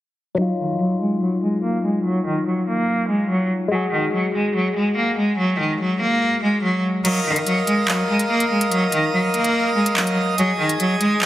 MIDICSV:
0, 0, Header, 1, 5, 480
1, 0, Start_track
1, 0, Key_signature, -6, "minor"
1, 0, Tempo, 416667
1, 440, Time_signature, 4, 2, 24, 8
1, 12970, End_track
2, 0, Start_track
2, 0, Title_t, "Pipe organ"
2, 0, Program_c, 0, 19
2, 8119, Note_on_c, 0, 75, 63
2, 8119, Note_on_c, 0, 77, 63
2, 8119, Note_on_c, 0, 87, 74
2, 8120, Note_on_c, 0, 70, 70
2, 11921, Note_off_c, 0, 70, 0
2, 11921, Note_off_c, 0, 77, 0
2, 11959, Note_on_c, 0, 80, 66
2, 11960, Note_on_c, 0, 68, 71
2, 12970, Note_off_c, 0, 68, 0
2, 12970, Note_off_c, 0, 75, 0
2, 12970, Note_off_c, 0, 80, 0
2, 12970, Note_off_c, 0, 87, 0
2, 12970, End_track
3, 0, Start_track
3, 0, Title_t, "Tine electric piano"
3, 0, Program_c, 1, 4
3, 400, Note_on_c, 1, 54, 59
3, 439, Note_on_c, 1, 63, 61
3, 478, Note_on_c, 1, 65, 71
3, 689, Control_c, 1, 64, 127
3, 4214, Note_off_c, 1, 54, 0
3, 4233, Note_off_c, 1, 63, 0
3, 4241, Note_on_c, 1, 56, 64
3, 4253, Note_off_c, 1, 65, 0
3, 4280, Note_on_c, 1, 66, 59
3, 4295, Control_c, 1, 64, 0
3, 4319, Note_on_c, 1, 68, 69
3, 4460, Control_c, 1, 64, 127
3, 8054, Note_off_c, 1, 56, 0
3, 8074, Note_off_c, 1, 66, 0
3, 8093, Note_off_c, 1, 68, 0
3, 8136, Control_c, 1, 64, 0
3, 12970, End_track
4, 0, Start_track
4, 0, Title_t, "Cello"
4, 0, Program_c, 2, 42
4, 435, Note_on_c, 2, 54, 100
4, 649, Note_off_c, 2, 54, 0
4, 686, Note_on_c, 2, 51, 79
4, 895, Note_off_c, 2, 51, 0
4, 912, Note_on_c, 2, 54, 86
4, 1127, Note_off_c, 2, 54, 0
4, 1158, Note_on_c, 2, 56, 79
4, 1370, Note_off_c, 2, 56, 0
4, 1399, Note_on_c, 2, 54, 80
4, 1611, Note_off_c, 2, 54, 0
4, 1640, Note_on_c, 2, 56, 73
4, 1851, Note_off_c, 2, 56, 0
4, 1884, Note_on_c, 2, 58, 81
4, 2094, Note_off_c, 2, 58, 0
4, 2126, Note_on_c, 2, 56, 71
4, 2335, Note_off_c, 2, 56, 0
4, 2354, Note_on_c, 2, 54, 94
4, 2568, Note_off_c, 2, 54, 0
4, 2603, Note_on_c, 2, 51, 82
4, 2813, Note_off_c, 2, 51, 0
4, 2836, Note_on_c, 2, 54, 67
4, 3049, Note_off_c, 2, 54, 0
4, 3093, Note_on_c, 2, 58, 80
4, 3538, Note_off_c, 2, 58, 0
4, 3550, Note_on_c, 2, 56, 76
4, 3766, Note_off_c, 2, 56, 0
4, 3801, Note_on_c, 2, 54, 88
4, 4012, Note_off_c, 2, 54, 0
4, 4280, Note_on_c, 2, 54, 104
4, 4491, Note_off_c, 2, 54, 0
4, 4516, Note_on_c, 2, 51, 86
4, 4729, Note_off_c, 2, 51, 0
4, 4758, Note_on_c, 2, 54, 83
4, 4970, Note_off_c, 2, 54, 0
4, 4998, Note_on_c, 2, 56, 79
4, 5210, Note_off_c, 2, 56, 0
4, 5247, Note_on_c, 2, 54, 83
4, 5456, Note_off_c, 2, 54, 0
4, 5478, Note_on_c, 2, 56, 75
4, 5690, Note_off_c, 2, 56, 0
4, 5719, Note_on_c, 2, 58, 77
4, 5931, Note_off_c, 2, 58, 0
4, 5964, Note_on_c, 2, 56, 73
4, 6173, Note_off_c, 2, 56, 0
4, 6199, Note_on_c, 2, 54, 96
4, 6411, Note_off_c, 2, 54, 0
4, 6441, Note_on_c, 2, 51, 74
4, 6652, Note_off_c, 2, 51, 0
4, 6684, Note_on_c, 2, 54, 74
4, 6894, Note_off_c, 2, 54, 0
4, 6922, Note_on_c, 2, 58, 85
4, 7372, Note_off_c, 2, 58, 0
4, 7406, Note_on_c, 2, 56, 74
4, 7615, Note_off_c, 2, 56, 0
4, 7638, Note_on_c, 2, 54, 82
4, 7851, Note_off_c, 2, 54, 0
4, 8115, Note_on_c, 2, 54, 100
4, 8329, Note_off_c, 2, 54, 0
4, 8367, Note_on_c, 2, 51, 82
4, 8575, Note_off_c, 2, 51, 0
4, 8592, Note_on_c, 2, 54, 88
4, 8807, Note_off_c, 2, 54, 0
4, 8839, Note_on_c, 2, 56, 80
4, 9051, Note_off_c, 2, 56, 0
4, 9080, Note_on_c, 2, 54, 81
4, 9292, Note_off_c, 2, 54, 0
4, 9321, Note_on_c, 2, 56, 79
4, 9532, Note_off_c, 2, 56, 0
4, 9564, Note_on_c, 2, 58, 86
4, 9774, Note_off_c, 2, 58, 0
4, 9807, Note_on_c, 2, 56, 71
4, 10015, Note_off_c, 2, 56, 0
4, 10034, Note_on_c, 2, 54, 95
4, 10248, Note_off_c, 2, 54, 0
4, 10283, Note_on_c, 2, 51, 85
4, 10493, Note_off_c, 2, 51, 0
4, 10516, Note_on_c, 2, 54, 69
4, 10729, Note_off_c, 2, 54, 0
4, 10773, Note_on_c, 2, 58, 82
4, 11218, Note_off_c, 2, 58, 0
4, 11231, Note_on_c, 2, 56, 76
4, 11446, Note_off_c, 2, 56, 0
4, 11481, Note_on_c, 2, 54, 85
4, 11692, Note_off_c, 2, 54, 0
4, 11960, Note_on_c, 2, 54, 110
4, 12172, Note_off_c, 2, 54, 0
4, 12197, Note_on_c, 2, 51, 87
4, 12410, Note_off_c, 2, 51, 0
4, 12438, Note_on_c, 2, 54, 88
4, 12650, Note_off_c, 2, 54, 0
4, 12677, Note_on_c, 2, 56, 81
4, 12890, Note_off_c, 2, 56, 0
4, 12927, Note_on_c, 2, 54, 84
4, 12970, Note_off_c, 2, 54, 0
4, 12970, End_track
5, 0, Start_track
5, 0, Title_t, "Drums"
5, 8120, Note_on_c, 9, 42, 69
5, 8120, Note_on_c, 9, 49, 93
5, 8235, Note_off_c, 9, 42, 0
5, 8235, Note_off_c, 9, 49, 0
5, 8480, Note_on_c, 9, 42, 78
5, 8595, Note_off_c, 9, 42, 0
5, 8600, Note_on_c, 9, 42, 78
5, 8715, Note_off_c, 9, 42, 0
5, 8840, Note_on_c, 9, 42, 73
5, 8955, Note_off_c, 9, 42, 0
5, 9080, Note_on_c, 9, 39, 111
5, 9195, Note_off_c, 9, 39, 0
5, 9440, Note_on_c, 9, 42, 75
5, 9555, Note_off_c, 9, 42, 0
5, 9680, Note_on_c, 9, 42, 73
5, 9795, Note_off_c, 9, 42, 0
5, 9920, Note_on_c, 9, 42, 88
5, 10035, Note_off_c, 9, 42, 0
5, 10040, Note_on_c, 9, 42, 72
5, 10155, Note_off_c, 9, 42, 0
5, 10279, Note_on_c, 9, 42, 93
5, 10394, Note_off_c, 9, 42, 0
5, 10760, Note_on_c, 9, 42, 64
5, 10875, Note_off_c, 9, 42, 0
5, 10880, Note_on_c, 9, 42, 63
5, 10995, Note_off_c, 9, 42, 0
5, 11360, Note_on_c, 9, 42, 77
5, 11475, Note_off_c, 9, 42, 0
5, 11480, Note_on_c, 9, 39, 100
5, 11595, Note_off_c, 9, 39, 0
5, 11600, Note_on_c, 9, 42, 75
5, 11715, Note_off_c, 9, 42, 0
5, 11960, Note_on_c, 9, 42, 74
5, 12075, Note_off_c, 9, 42, 0
5, 12319, Note_on_c, 9, 42, 77
5, 12435, Note_off_c, 9, 42, 0
5, 12440, Note_on_c, 9, 42, 75
5, 12555, Note_off_c, 9, 42, 0
5, 12679, Note_on_c, 9, 42, 73
5, 12794, Note_off_c, 9, 42, 0
5, 12919, Note_on_c, 9, 39, 118
5, 12970, Note_off_c, 9, 39, 0
5, 12970, End_track
0, 0, End_of_file